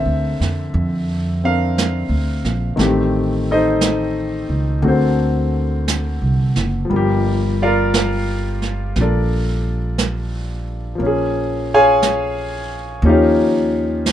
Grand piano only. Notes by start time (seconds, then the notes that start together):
Already playing: D3 A#3 C4 A4 C5 E5
1.44 C4 D4 A#4 F5
2.76 D#3 A3 C4
2.81 G4
3.51 D#4 A4 C5 D#5
4.82 D3 A#3 C4 F#4
4.88 C4 F#4 A4 C5
6.85 F3
6.90 G3 A#3
6.96 G4
7.62 F4 A#4 D5 F5
8.98 D4 F4 A#4 D5
9.02 A4
10.95 F3 A#3
11.02 C#4
11.06 G#4
11.74 G#4 C#5 F5 G#5
13.05 F3 C#4 D#4 G4
13.09 F4 A#4 C#5 F5